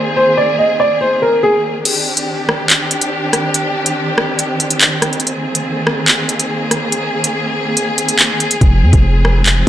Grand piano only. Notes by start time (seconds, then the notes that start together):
Already playing: C5
0.16 C5
0.37 D5
0.59 D#5
0.80 D5
1.01 C5
1.22 A#4
1.43 G#4